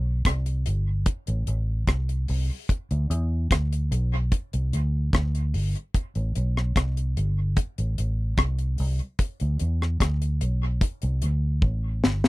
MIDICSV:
0, 0, Header, 1, 3, 480
1, 0, Start_track
1, 0, Key_signature, 0, "minor"
1, 0, Tempo, 812678
1, 1588, Time_signature, 4, 2, 24, 8
1, 7254, End_track
2, 0, Start_track
2, 0, Title_t, "Fingered electric bass"
2, 0, Program_c, 0, 33
2, 0, Note_on_c, 0, 35, 85
2, 142, Note_off_c, 0, 35, 0
2, 150, Note_on_c, 0, 36, 94
2, 378, Note_off_c, 0, 36, 0
2, 395, Note_on_c, 0, 31, 87
2, 621, Note_off_c, 0, 31, 0
2, 757, Note_on_c, 0, 33, 83
2, 866, Note_off_c, 0, 33, 0
2, 871, Note_on_c, 0, 33, 77
2, 1099, Note_off_c, 0, 33, 0
2, 1111, Note_on_c, 0, 36, 78
2, 1338, Note_off_c, 0, 36, 0
2, 1355, Note_on_c, 0, 36, 78
2, 1470, Note_off_c, 0, 36, 0
2, 1718, Note_on_c, 0, 38, 93
2, 1826, Note_off_c, 0, 38, 0
2, 1831, Note_on_c, 0, 40, 96
2, 2059, Note_off_c, 0, 40, 0
2, 2074, Note_on_c, 0, 38, 82
2, 2300, Note_off_c, 0, 38, 0
2, 2312, Note_on_c, 0, 35, 95
2, 2539, Note_off_c, 0, 35, 0
2, 2680, Note_on_c, 0, 36, 80
2, 2787, Note_off_c, 0, 36, 0
2, 2795, Note_on_c, 0, 38, 84
2, 3021, Note_off_c, 0, 38, 0
2, 3035, Note_on_c, 0, 38, 92
2, 3261, Note_off_c, 0, 38, 0
2, 3271, Note_on_c, 0, 31, 80
2, 3388, Note_off_c, 0, 31, 0
2, 3637, Note_on_c, 0, 33, 86
2, 3745, Note_off_c, 0, 33, 0
2, 3760, Note_on_c, 0, 35, 88
2, 3983, Note_off_c, 0, 35, 0
2, 3995, Note_on_c, 0, 36, 100
2, 4221, Note_off_c, 0, 36, 0
2, 4237, Note_on_c, 0, 31, 106
2, 4462, Note_off_c, 0, 31, 0
2, 4598, Note_on_c, 0, 33, 75
2, 4706, Note_off_c, 0, 33, 0
2, 4717, Note_on_c, 0, 33, 86
2, 4941, Note_off_c, 0, 33, 0
2, 4952, Note_on_c, 0, 36, 93
2, 5179, Note_off_c, 0, 36, 0
2, 5196, Note_on_c, 0, 36, 88
2, 5310, Note_off_c, 0, 36, 0
2, 5560, Note_on_c, 0, 38, 89
2, 5667, Note_off_c, 0, 38, 0
2, 5677, Note_on_c, 0, 40, 87
2, 5901, Note_off_c, 0, 40, 0
2, 5912, Note_on_c, 0, 38, 88
2, 6139, Note_off_c, 0, 38, 0
2, 6153, Note_on_c, 0, 35, 86
2, 6379, Note_off_c, 0, 35, 0
2, 6516, Note_on_c, 0, 36, 86
2, 6624, Note_off_c, 0, 36, 0
2, 6631, Note_on_c, 0, 38, 79
2, 6858, Note_off_c, 0, 38, 0
2, 6867, Note_on_c, 0, 33, 76
2, 7096, Note_off_c, 0, 33, 0
2, 7109, Note_on_c, 0, 31, 79
2, 7254, Note_off_c, 0, 31, 0
2, 7254, End_track
3, 0, Start_track
3, 0, Title_t, "Drums"
3, 148, Note_on_c, 9, 36, 106
3, 148, Note_on_c, 9, 42, 98
3, 155, Note_on_c, 9, 37, 101
3, 207, Note_off_c, 9, 36, 0
3, 207, Note_off_c, 9, 42, 0
3, 215, Note_off_c, 9, 37, 0
3, 272, Note_on_c, 9, 42, 56
3, 331, Note_off_c, 9, 42, 0
3, 389, Note_on_c, 9, 42, 75
3, 448, Note_off_c, 9, 42, 0
3, 626, Note_on_c, 9, 42, 97
3, 627, Note_on_c, 9, 36, 114
3, 685, Note_off_c, 9, 42, 0
3, 686, Note_off_c, 9, 36, 0
3, 751, Note_on_c, 9, 42, 52
3, 810, Note_off_c, 9, 42, 0
3, 869, Note_on_c, 9, 42, 59
3, 928, Note_off_c, 9, 42, 0
3, 1107, Note_on_c, 9, 42, 77
3, 1108, Note_on_c, 9, 36, 104
3, 1114, Note_on_c, 9, 37, 112
3, 1166, Note_off_c, 9, 42, 0
3, 1167, Note_off_c, 9, 36, 0
3, 1173, Note_off_c, 9, 37, 0
3, 1235, Note_on_c, 9, 42, 51
3, 1294, Note_off_c, 9, 42, 0
3, 1349, Note_on_c, 9, 46, 72
3, 1408, Note_off_c, 9, 46, 0
3, 1590, Note_on_c, 9, 36, 107
3, 1593, Note_on_c, 9, 42, 86
3, 1649, Note_off_c, 9, 36, 0
3, 1652, Note_off_c, 9, 42, 0
3, 1717, Note_on_c, 9, 42, 45
3, 1776, Note_off_c, 9, 42, 0
3, 1836, Note_on_c, 9, 42, 64
3, 1895, Note_off_c, 9, 42, 0
3, 2072, Note_on_c, 9, 36, 108
3, 2073, Note_on_c, 9, 42, 91
3, 2080, Note_on_c, 9, 37, 111
3, 2131, Note_off_c, 9, 36, 0
3, 2132, Note_off_c, 9, 42, 0
3, 2139, Note_off_c, 9, 37, 0
3, 2200, Note_on_c, 9, 42, 49
3, 2259, Note_off_c, 9, 42, 0
3, 2315, Note_on_c, 9, 42, 77
3, 2374, Note_off_c, 9, 42, 0
3, 2550, Note_on_c, 9, 42, 92
3, 2551, Note_on_c, 9, 36, 110
3, 2609, Note_off_c, 9, 42, 0
3, 2610, Note_off_c, 9, 36, 0
3, 2677, Note_on_c, 9, 42, 52
3, 2736, Note_off_c, 9, 42, 0
3, 2795, Note_on_c, 9, 42, 64
3, 2855, Note_off_c, 9, 42, 0
3, 3031, Note_on_c, 9, 36, 113
3, 3033, Note_on_c, 9, 42, 67
3, 3040, Note_on_c, 9, 37, 104
3, 3090, Note_off_c, 9, 36, 0
3, 3092, Note_off_c, 9, 42, 0
3, 3099, Note_off_c, 9, 37, 0
3, 3159, Note_on_c, 9, 42, 44
3, 3218, Note_off_c, 9, 42, 0
3, 3273, Note_on_c, 9, 46, 75
3, 3332, Note_off_c, 9, 46, 0
3, 3398, Note_on_c, 9, 42, 33
3, 3457, Note_off_c, 9, 42, 0
3, 3511, Note_on_c, 9, 36, 112
3, 3511, Note_on_c, 9, 42, 84
3, 3570, Note_off_c, 9, 36, 0
3, 3570, Note_off_c, 9, 42, 0
3, 3634, Note_on_c, 9, 42, 39
3, 3693, Note_off_c, 9, 42, 0
3, 3753, Note_on_c, 9, 42, 63
3, 3812, Note_off_c, 9, 42, 0
3, 3883, Note_on_c, 9, 37, 62
3, 3942, Note_off_c, 9, 37, 0
3, 3992, Note_on_c, 9, 36, 105
3, 3993, Note_on_c, 9, 42, 92
3, 4000, Note_on_c, 9, 37, 114
3, 4051, Note_off_c, 9, 36, 0
3, 4052, Note_off_c, 9, 42, 0
3, 4059, Note_off_c, 9, 37, 0
3, 4118, Note_on_c, 9, 42, 52
3, 4177, Note_off_c, 9, 42, 0
3, 4235, Note_on_c, 9, 42, 74
3, 4294, Note_off_c, 9, 42, 0
3, 4469, Note_on_c, 9, 42, 91
3, 4470, Note_on_c, 9, 36, 107
3, 4528, Note_off_c, 9, 42, 0
3, 4529, Note_off_c, 9, 36, 0
3, 4596, Note_on_c, 9, 42, 55
3, 4655, Note_off_c, 9, 42, 0
3, 4714, Note_on_c, 9, 42, 68
3, 4773, Note_off_c, 9, 42, 0
3, 4946, Note_on_c, 9, 42, 69
3, 4948, Note_on_c, 9, 36, 117
3, 4953, Note_on_c, 9, 37, 100
3, 5005, Note_off_c, 9, 42, 0
3, 5007, Note_off_c, 9, 36, 0
3, 5012, Note_off_c, 9, 37, 0
3, 5071, Note_on_c, 9, 42, 48
3, 5130, Note_off_c, 9, 42, 0
3, 5186, Note_on_c, 9, 46, 69
3, 5245, Note_off_c, 9, 46, 0
3, 5310, Note_on_c, 9, 42, 36
3, 5369, Note_off_c, 9, 42, 0
3, 5427, Note_on_c, 9, 42, 80
3, 5428, Note_on_c, 9, 36, 103
3, 5486, Note_off_c, 9, 42, 0
3, 5487, Note_off_c, 9, 36, 0
3, 5551, Note_on_c, 9, 42, 47
3, 5610, Note_off_c, 9, 42, 0
3, 5667, Note_on_c, 9, 42, 64
3, 5726, Note_off_c, 9, 42, 0
3, 5801, Note_on_c, 9, 37, 64
3, 5860, Note_off_c, 9, 37, 0
3, 5909, Note_on_c, 9, 36, 94
3, 5910, Note_on_c, 9, 42, 94
3, 5917, Note_on_c, 9, 37, 101
3, 5968, Note_off_c, 9, 36, 0
3, 5969, Note_off_c, 9, 42, 0
3, 5976, Note_off_c, 9, 37, 0
3, 6034, Note_on_c, 9, 42, 51
3, 6093, Note_off_c, 9, 42, 0
3, 6149, Note_on_c, 9, 42, 71
3, 6208, Note_off_c, 9, 42, 0
3, 6386, Note_on_c, 9, 36, 112
3, 6388, Note_on_c, 9, 42, 89
3, 6445, Note_off_c, 9, 36, 0
3, 6447, Note_off_c, 9, 42, 0
3, 6507, Note_on_c, 9, 42, 49
3, 6566, Note_off_c, 9, 42, 0
3, 6625, Note_on_c, 9, 42, 67
3, 6684, Note_off_c, 9, 42, 0
3, 6864, Note_on_c, 9, 36, 106
3, 6923, Note_off_c, 9, 36, 0
3, 7109, Note_on_c, 9, 38, 72
3, 7168, Note_off_c, 9, 38, 0
3, 7230, Note_on_c, 9, 38, 86
3, 7254, Note_off_c, 9, 38, 0
3, 7254, End_track
0, 0, End_of_file